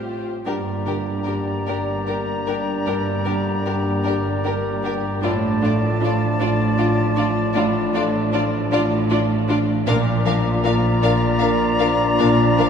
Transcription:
Already playing: A2 C4 F4 G4 C5
0.46 G1 G2 A#3 D4 G4 A#4 D5 A#5
0.87 D3 D4 G4 A#4
1.26 D4 G4 A#4
1.67 G1 G2 D4 G4 A#4 D5
2.08 D4 G4 A#4
2.47 D4 G4 A#4
2.86 G1 G2 D4 G4 A#4
3.25 D3 D4 G4 A#4
3.66 D4 G4 A#4
4.05 G1 G2 D4 G4 A#4 D5
4.44 D4 G4 A#4
4.83 D4 G4 A#4
5.22 A1 A2 F3 D4 F4 D5 A5
5.61 A3 D4 F4 D5
6.01 D4 F4 D5
6.40 A1 A2 D4 F4 D5
6.78 D4 F4 D5
7.16 D4 F4 D5
7.54 A1 A2 D4 F4 D5
7.94 A3 D4 F4 D5
8.33 D4 F4 D5
8.72 A1 A2 D4 F4 D5
9.10 D4 F4 D5
9.49 D4 F4 D5
9.87 A#1 A#2 F3 D4 F4 A#4 D5 F5 A#5
10.26 F3 D4 A#4 F5
10.64 D4 F4 A#4 F5
11.02 A#1 A#2 D4 A#4 D5 F5
11.41 D4 A#4 F5
11.79 D4 F4 A#4 F5
12.19 A#1 A#2 D4 A#4 F5
12.58 F3 D4 A#4 F5

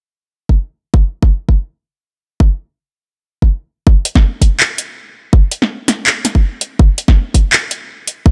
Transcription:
0.49 kick
0.94 kick
1.23 kick
1.49 kick
2.40 kick
3.42 kick
3.87 kick
4.05 closed hi-hat
4.15 kick, snare
4.42 kick, closed hi-hat
4.60 clap
4.78 closed hi-hat
5.33 kick
5.51 closed hi-hat
5.62 snare
5.88 snare, closed hi-hat
6.07 clap
6.25 snare, closed hi-hat
6.35 kick
6.61 closed hi-hat
6.79 kick
6.98 closed hi-hat
7.08 kick, snare
7.34 kick, closed hi-hat
7.53 clap
7.71 closed hi-hat
8.07 closed hi-hat
8.26 kick

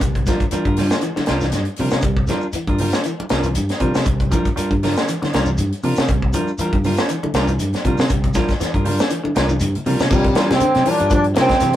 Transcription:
0.01 C2 G3, kick, closed hi-hat, shekere
0.15 kick, closed hi-hat, high conga
0.26 F3 G3 D4 F4 A#4, kick, snare, closed hi-hat, high conga, shekere
0.40 kick, closed hi-hat, shekere
0.51 E3 G3 D4 F4 A#4, closed hi-hat, shekere
0.65 G2 D4 F4 A#4, kick, closed hi-hat
0.76 G3 D4 F4, snare, open hi-hat, high conga, low conga, shekere
0.90 snare, closed hi-hat, shekere
1.01 E3, closed hi-hat, shekere
1.16 D3, snare, high conga
1.26 C2 G3 D4 F4 A#4, snare, closed hi-hat, shekere
1.40 E3, snare, shekere
1.52 G2, snare, closed hi-hat, high conga, shekere
1.65 closed hi-hat
1.76 C3 F3 G3 D4 F4, open hi-hat, low conga, shekere
1.81 A#4
1.90 C3, snare, closed hi-hat, high conga, shekere
2.02 C2 G3, kick, closed hi-hat, shekere
2.17 kick
2.27 F3 G3 D4 F4 A#4, snare, closed hi-hat, high conga, shekere
2.41 shekere
2.53 E3, closed hi-hat, shekere
2.67 G2 D4 F4 A#4, kick, closed hi-hat
2.78 G3 D4 F4 A#4, open hi-hat, high conga, low conga, shekere
2.92 snare, closed hi-hat, shekere
3.04 E3, closed hi-hat, shekere
3.20 muted clean electric guitar stroke, high conga
3.29 C2 G3 D4 F4 A#4, snare, closed hi-hat, shekere
3.43 E3, closed hi-hat, shekere
3.55 G2, closed hi-hat, high conga, shekere
3.69 snare, closed hi-hat
3.80 C3 F3 G3 D4 F4 A#4, kick, closed hi-hat, low conga, shekere
3.95 C3, snare, high conga, shekere
4.05 C2 G3, kick, closed hi-hat, shekere
4.20 kick, closed hi-hat, high conga
4.31 F3 G3 D4 F4 A#4, kick, closed hi-hat, high conga, shekere
4.45 kick, closed hi-hat, shekere
4.56 G3 D4 F4 A#4, closed hi-hat, shekere
4.71 G2, kick, closed hi-hat
4.83 G3 D4 F4 A#4, snare, open hi-hat, high conga, low conga, shekere
4.96 snare, closed hi-hat, shekere
5.08 E3, closed hi-hat, shekere
5.22 D3, snare, high conga
5.33 C2 G3 D4 F4 A#4, snare, closed hi-hat, shekere
5.45 E3, shekere
5.58 G2, closed hi-hat, high conga, shekere
5.72 closed hi-hat
5.83 C3 F3 D4 F4 A#4, muted clean electric guitar stroke, open hi-hat, low conga, shekere
5.96 C3, snare, closed hi-hat, shekere
6.08 C2 G3, kick, closed hi-hat, shekere
6.22 kick
6.33 F3 G3 D4 F4 A#4, closed hi-hat, high conga, shekere
6.48 shekere
6.58 E3 G3 D4 F4 A#4, closed hi-hat, shekere
6.73 G2, kick, closed hi-hat
6.84 G3 D4 F4 A#4, open hi-hat, high conga, low conga, shekere
6.97 snare, closed hi-hat, shekere
7.09 E3, closed hi-hat, shekere
7.23 D3, high conga
7.34 C2 G3 D4 F4 A#4, snare, closed hi-hat, shekere
7.48 E3, closed hi-hat, shekere
7.59 G2, closed hi-hat, high conga, shekere
7.73 snare, closed hi-hat, high conga
7.84 C3 F3 G3 D4 F4 A#4, kick, closed hi-hat, low conga, shekere
7.98 C3, snare, low conga, shekere
8.09 C2 G3, kick, closed hi-hat, shekere
8.24 kick, closed hi-hat, high conga
8.34 F3 G3 D4 F4 A#4, kick, snare, closed hi-hat, high conga, shekere
8.48 kick, snare, closed hi-hat, shekere
8.60 E3, snare, closed hi-hat, shekere
8.74 G2 D4 F4 A#4, kick, closed hi-hat
8.85 G3 D4 F4 A#4, open hi-hat, high conga, low conga, shekere
8.99 snare, closed hi-hat, shekere
9.10 E3, closed hi-hat, shekere
9.24 D3, high conga
9.35 C2 G3 D4 F4 A#4, snare, closed hi-hat, high conga, shekere
9.49 E3, high conga, shekere
9.60 G2, closed hi-hat, low conga, shekere
9.75 closed hi-hat, low conga
9.86 C3 F3 G3 D4 F4 A#4, open hi-hat, low conga, shekere
10.00 C3, snare, closed hi-hat, low conga, shekere
10.10 A#2 C3 D3 F3 G3 D4 F4 A#4, kick, crash, high conga, low conga, shekere
10.24 kick, closed hi-hat
10.35 E3 G3 D4 F4 A#4, snare, closed hi-hat, shekere
10.51 C3 C4, snare, high conga
10.60 D3, closed hi-hat, shekere
10.74 C3, snare, closed hi-hat, high conga
10.85 A#2 D3 E3 F3 G3 D4 F4 A#4, muted fingered electric bass stroke, open hi-hat, shekere
10.90 D4
10.99 G2 D4 F4 A#4, closed hi-hat
11.10 A#2 D3 F3 G3, kick, closed hi-hat, shekere
11.15 D4
11.24 closed hi-hat
11.35 C3 G3 D4 F4 A#4, muted clean electric guitar stroke, snare, closed hi-hat, high conga, shekere
11.40 C4
11.49 kick, snare, closed hi-hat
11.60 C3 E3, snare, closed hi-hat, high conga, shekere

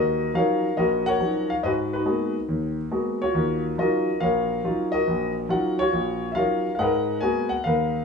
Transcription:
Already playing: D#2 F#4 A#4 D#5
0.34 F3 F#3 C#4 D#4 A#4 C#5 F5
0.77 A#1 F#4 A#4 D#5
1.06 A#4 C#5 F#5
1.20 F3 F#3 C#4 D#4
1.50 F5
1.63 G#2 F#4 B4 D#5
1.93 D#4 F#4 B4
2.06 G#3 A#3 B3 F#4
2.48 D#2
2.91 G#3 A#3 B3 F#4
3.22 F4 F#4 C#5
3.35 D#2 D#3
3.78 F#3 C#4 D#4 F4 F#4 A#4 D#5
4.20 A#1 A#4 C#5 F5
4.64 F#3 C#4 D#4 F4
4.92 F#4 A#4 D#5
5.07 A#1
5.49 F#3 C#4 D#4 F4 F#5
5.79 F4 F#4 C#5
5.92 A#1
6.32 F#3 C#4 D#4 F4 E5 F5
6.38 A#4 C#5
6.75 G#2 F5 F#5
6.79 G#3 A#4 B4
7.21 G#3 A#3 B3 F#4 G#5
7.49 F#5
7.64 D#2 A#4 B4 F5

